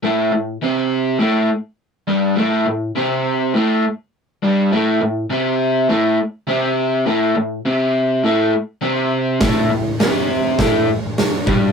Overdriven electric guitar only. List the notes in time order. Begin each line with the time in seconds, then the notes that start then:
0.03 A2 A3
0.33 A2
0.62 C3 C4
1.19 A2 A3
2.08 G2 G3
2.36 A2 A3
2.67 A2
2.95 C3 C4
3.54 A2 A3
4.42 G2 G3
4.72 A2 A3
5.01 A2
5.30 C3 C4
5.89 A2 A3
6.47 C3 C4
7.06 A2 A3
7.36 A2
7.65 C3 C4
8.24 A2 A3
8.81 C3 C4
9.41 A2 A3
9.71 A2
10.00 C3 C4
10.59 A2 A3
11.46 G2 G3